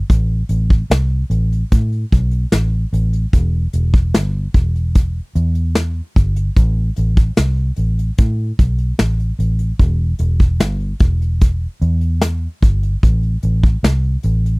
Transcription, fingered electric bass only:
0, 0, Header, 1, 2, 480
1, 0, Start_track
1, 0, Tempo, 808625
1, 55, Time_signature, 4, 2, 24, 8
1, 8664, End_track
2, 0, Start_track
2, 0, Title_t, "Fingered electric bass"
2, 0, Program_c, 0, 33
2, 58, Note_on_c, 0, 33, 95
2, 249, Note_off_c, 0, 33, 0
2, 292, Note_on_c, 0, 33, 83
2, 485, Note_off_c, 0, 33, 0
2, 535, Note_on_c, 0, 36, 83
2, 727, Note_off_c, 0, 36, 0
2, 771, Note_on_c, 0, 33, 77
2, 965, Note_off_c, 0, 33, 0
2, 1021, Note_on_c, 0, 45, 84
2, 1211, Note_off_c, 0, 45, 0
2, 1261, Note_on_c, 0, 35, 88
2, 1451, Note_off_c, 0, 35, 0
2, 1496, Note_on_c, 0, 33, 81
2, 1688, Note_off_c, 0, 33, 0
2, 1738, Note_on_c, 0, 33, 88
2, 1929, Note_off_c, 0, 33, 0
2, 1979, Note_on_c, 0, 28, 104
2, 2170, Note_off_c, 0, 28, 0
2, 2217, Note_on_c, 0, 28, 89
2, 2458, Note_off_c, 0, 28, 0
2, 2458, Note_on_c, 0, 31, 62
2, 2649, Note_off_c, 0, 31, 0
2, 2698, Note_on_c, 0, 28, 77
2, 3081, Note_off_c, 0, 28, 0
2, 3178, Note_on_c, 0, 40, 83
2, 3562, Note_off_c, 0, 40, 0
2, 3660, Note_on_c, 0, 31, 79
2, 3850, Note_off_c, 0, 31, 0
2, 3899, Note_on_c, 0, 33, 96
2, 4090, Note_off_c, 0, 33, 0
2, 4142, Note_on_c, 0, 33, 78
2, 4332, Note_off_c, 0, 33, 0
2, 4380, Note_on_c, 0, 36, 86
2, 4571, Note_off_c, 0, 36, 0
2, 4616, Note_on_c, 0, 33, 74
2, 4808, Note_off_c, 0, 33, 0
2, 4862, Note_on_c, 0, 45, 94
2, 5052, Note_off_c, 0, 45, 0
2, 5100, Note_on_c, 0, 35, 80
2, 5290, Note_off_c, 0, 35, 0
2, 5334, Note_on_c, 0, 33, 74
2, 5527, Note_off_c, 0, 33, 0
2, 5573, Note_on_c, 0, 33, 75
2, 5766, Note_off_c, 0, 33, 0
2, 5815, Note_on_c, 0, 28, 104
2, 6008, Note_off_c, 0, 28, 0
2, 6052, Note_on_c, 0, 28, 93
2, 6290, Note_off_c, 0, 28, 0
2, 6290, Note_on_c, 0, 31, 72
2, 6485, Note_off_c, 0, 31, 0
2, 6534, Note_on_c, 0, 28, 86
2, 6919, Note_off_c, 0, 28, 0
2, 7014, Note_on_c, 0, 40, 82
2, 7398, Note_off_c, 0, 40, 0
2, 7494, Note_on_c, 0, 31, 83
2, 7686, Note_off_c, 0, 31, 0
2, 7736, Note_on_c, 0, 33, 91
2, 7928, Note_off_c, 0, 33, 0
2, 7975, Note_on_c, 0, 33, 85
2, 8167, Note_off_c, 0, 33, 0
2, 8210, Note_on_c, 0, 36, 86
2, 8404, Note_off_c, 0, 36, 0
2, 8454, Note_on_c, 0, 33, 88
2, 8646, Note_off_c, 0, 33, 0
2, 8664, End_track
0, 0, End_of_file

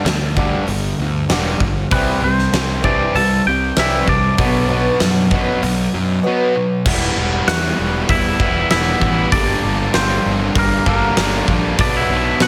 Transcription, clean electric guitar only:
0, 0, Header, 1, 2, 480
1, 0, Start_track
1, 0, Key_signature, 1, "minor"
1, 0, Tempo, 617284
1, 1493, Time_signature, 4, 2, 24, 8
1, 9701, End_track
2, 0, Start_track
2, 0, Title_t, "Clean electric guitar"
2, 0, Program_c, 0, 27
2, 0, Note_on_c, 0, 62, 73
2, 0, Note_on_c, 0, 74, 65
2, 504, Note_off_c, 0, 74, 0
2, 505, Note_off_c, 0, 62, 0
2, 1495, Note_on_c, 0, 71, 89
2, 1512, Note_on_c, 0, 59, 64
2, 1727, Note_off_c, 0, 59, 0
2, 1740, Note_off_c, 0, 71, 0
2, 1743, Note_on_c, 0, 72, 81
2, 1752, Note_on_c, 0, 60, 63
2, 2192, Note_off_c, 0, 60, 0
2, 2214, Note_on_c, 0, 74, 89
2, 2221, Note_on_c, 0, 62, 69
2, 2233, Note_off_c, 0, 72, 0
2, 2437, Note_off_c, 0, 74, 0
2, 2442, Note_off_c, 0, 62, 0
2, 2452, Note_on_c, 0, 69, 75
2, 2454, Note_on_c, 0, 81, 93
2, 2677, Note_off_c, 0, 69, 0
2, 2695, Note_off_c, 0, 81, 0
2, 2698, Note_on_c, 0, 79, 103
2, 2705, Note_on_c, 0, 67, 77
2, 2920, Note_off_c, 0, 79, 0
2, 2924, Note_off_c, 0, 67, 0
2, 2948, Note_on_c, 0, 76, 90
2, 2953, Note_on_c, 0, 64, 62
2, 3167, Note_off_c, 0, 64, 0
2, 3178, Note_off_c, 0, 76, 0
2, 3181, Note_on_c, 0, 74, 83
2, 3188, Note_on_c, 0, 62, 61
2, 5068, Note_off_c, 0, 74, 0
2, 5072, Note_off_c, 0, 62, 0
2, 5816, Note_on_c, 0, 78, 100
2, 5821, Note_on_c, 0, 66, 79
2, 6267, Note_off_c, 0, 66, 0
2, 6297, Note_on_c, 0, 76, 94
2, 6306, Note_off_c, 0, 78, 0
2, 6309, Note_on_c, 0, 64, 77
2, 6745, Note_off_c, 0, 76, 0
2, 6751, Note_off_c, 0, 64, 0
2, 6773, Note_on_c, 0, 76, 99
2, 6779, Note_on_c, 0, 64, 71
2, 7225, Note_off_c, 0, 64, 0
2, 7246, Note_off_c, 0, 76, 0
2, 7249, Note_on_c, 0, 74, 94
2, 7253, Note_on_c, 0, 62, 70
2, 7702, Note_off_c, 0, 62, 0
2, 7732, Note_off_c, 0, 74, 0
2, 7733, Note_on_c, 0, 60, 72
2, 7735, Note_on_c, 0, 72, 74
2, 8181, Note_off_c, 0, 72, 0
2, 8182, Note_off_c, 0, 60, 0
2, 8227, Note_on_c, 0, 58, 64
2, 8235, Note_on_c, 0, 70, 78
2, 8443, Note_off_c, 0, 58, 0
2, 8458, Note_off_c, 0, 70, 0
2, 8460, Note_on_c, 0, 58, 64
2, 8468, Note_on_c, 0, 70, 79
2, 8903, Note_off_c, 0, 58, 0
2, 8907, Note_off_c, 0, 70, 0
2, 9180, Note_on_c, 0, 62, 78
2, 9180, Note_on_c, 0, 74, 90
2, 9286, Note_off_c, 0, 62, 0
2, 9301, Note_off_c, 0, 74, 0
2, 9301, Note_on_c, 0, 76, 107
2, 9305, Note_on_c, 0, 64, 75
2, 9630, Note_off_c, 0, 64, 0
2, 9657, Note_on_c, 0, 66, 83
2, 9663, Note_on_c, 0, 78, 100
2, 9665, Note_off_c, 0, 76, 0
2, 9701, Note_off_c, 0, 66, 0
2, 9701, Note_off_c, 0, 78, 0
2, 9701, End_track
0, 0, End_of_file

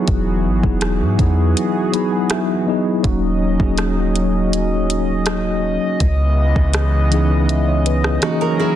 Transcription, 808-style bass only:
0, 0, Header, 1, 2, 480
1, 0, Start_track
1, 0, Tempo, 740741
1, 51, Time_signature, 4, 2, 24, 8
1, 5674, End_track
2, 0, Start_track
2, 0, Title_t, "808-style bass"
2, 0, Program_c, 0, 38
2, 51, Note_on_c, 0, 28, 97
2, 292, Note_on_c, 0, 32, 96
2, 302, Note_off_c, 0, 28, 0
2, 406, Note_off_c, 0, 32, 0
2, 412, Note_on_c, 0, 28, 104
2, 653, Note_on_c, 0, 44, 91
2, 663, Note_off_c, 0, 28, 0
2, 766, Note_off_c, 0, 44, 0
2, 771, Note_on_c, 0, 40, 101
2, 1001, Note_off_c, 0, 40, 0
2, 1973, Note_on_c, 0, 27, 104
2, 2318, Note_off_c, 0, 27, 0
2, 2332, Note_on_c, 0, 27, 97
2, 3746, Note_off_c, 0, 27, 0
2, 3892, Note_on_c, 0, 37, 103
2, 4237, Note_off_c, 0, 37, 0
2, 4251, Note_on_c, 0, 37, 98
2, 5305, Note_off_c, 0, 37, 0
2, 5674, End_track
0, 0, End_of_file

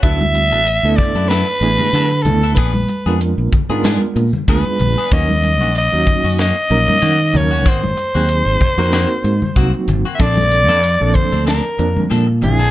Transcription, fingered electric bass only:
0, 0, Header, 1, 3, 480
1, 0, Start_track
1, 0, Tempo, 635593
1, 26, Time_signature, 4, 2, 24, 8
1, 9596, End_track
2, 0, Start_track
2, 0, Title_t, "Fingered electric bass"
2, 0, Program_c, 0, 33
2, 24, Note_on_c, 0, 38, 90
2, 392, Note_off_c, 0, 38, 0
2, 392, Note_on_c, 0, 33, 80
2, 597, Note_off_c, 0, 33, 0
2, 629, Note_on_c, 0, 38, 74
2, 724, Note_off_c, 0, 38, 0
2, 867, Note_on_c, 0, 42, 74
2, 1074, Note_off_c, 0, 42, 0
2, 1215, Note_on_c, 0, 33, 94
2, 1330, Note_off_c, 0, 33, 0
2, 1457, Note_on_c, 0, 50, 90
2, 1701, Note_on_c, 0, 38, 77
2, 1712, Note_off_c, 0, 50, 0
2, 1943, Note_off_c, 0, 38, 0
2, 1943, Note_on_c, 0, 34, 98
2, 2146, Note_off_c, 0, 34, 0
2, 2311, Note_on_c, 0, 41, 86
2, 2515, Note_off_c, 0, 41, 0
2, 2551, Note_on_c, 0, 34, 88
2, 2644, Note_off_c, 0, 34, 0
2, 2790, Note_on_c, 0, 44, 83
2, 2995, Note_off_c, 0, 44, 0
2, 3139, Note_on_c, 0, 46, 89
2, 3252, Note_off_c, 0, 46, 0
2, 3383, Note_on_c, 0, 38, 95
2, 3494, Note_off_c, 0, 38, 0
2, 3627, Note_on_c, 0, 34, 98
2, 3737, Note_off_c, 0, 34, 0
2, 3864, Note_on_c, 0, 39, 99
2, 4235, Note_off_c, 0, 39, 0
2, 4235, Note_on_c, 0, 34, 85
2, 4438, Note_off_c, 0, 34, 0
2, 4481, Note_on_c, 0, 39, 71
2, 4570, Note_off_c, 0, 39, 0
2, 4712, Note_on_c, 0, 42, 79
2, 4916, Note_off_c, 0, 42, 0
2, 5063, Note_on_c, 0, 34, 99
2, 5174, Note_off_c, 0, 34, 0
2, 5305, Note_on_c, 0, 51, 91
2, 5540, Note_on_c, 0, 39, 81
2, 5551, Note_off_c, 0, 51, 0
2, 5783, Note_off_c, 0, 39, 0
2, 5783, Note_on_c, 0, 32, 99
2, 5987, Note_off_c, 0, 32, 0
2, 6155, Note_on_c, 0, 39, 85
2, 6359, Note_off_c, 0, 39, 0
2, 6388, Note_on_c, 0, 32, 81
2, 6483, Note_off_c, 0, 32, 0
2, 6628, Note_on_c, 0, 41, 83
2, 6835, Note_off_c, 0, 41, 0
2, 6979, Note_on_c, 0, 44, 88
2, 7094, Note_off_c, 0, 44, 0
2, 7221, Note_on_c, 0, 36, 92
2, 7334, Note_off_c, 0, 36, 0
2, 7460, Note_on_c, 0, 32, 95
2, 7574, Note_off_c, 0, 32, 0
2, 7703, Note_on_c, 0, 34, 94
2, 8070, Note_off_c, 0, 34, 0
2, 8070, Note_on_c, 0, 41, 88
2, 8277, Note_off_c, 0, 41, 0
2, 8317, Note_on_c, 0, 34, 76
2, 8410, Note_off_c, 0, 34, 0
2, 8554, Note_on_c, 0, 38, 82
2, 8760, Note_off_c, 0, 38, 0
2, 8904, Note_on_c, 0, 41, 104
2, 9018, Note_off_c, 0, 41, 0
2, 9148, Note_on_c, 0, 46, 94
2, 9385, Note_on_c, 0, 34, 80
2, 9396, Note_off_c, 0, 46, 0
2, 9596, Note_off_c, 0, 34, 0
2, 9596, End_track
3, 0, Start_track
3, 0, Title_t, "Muted fingered electric bass strokes"
3, 3274, Note_on_c, 9, 29, 37
3, 3349, Note_off_c, 9, 29, 0
3, 7122, Note_on_c, 9, 29, 40
3, 7198, Note_off_c, 9, 29, 0
3, 9596, End_track
0, 0, End_of_file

